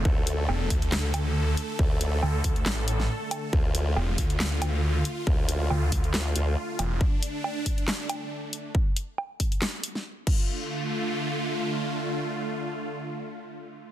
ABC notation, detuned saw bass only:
X:1
M:4/4
L:1/8
Q:"Swing 16ths" 1/4=138
K:Dm
V:1 name="Detuned saw bass" clef=bass
z2 E,,, D,,4 z | z2 D,, D,, A,,,2 z2 | z2 E,,, D,,4 z | z2 D,, D,, z3 E,,, |
z8 | z8 | z8 | z8 |]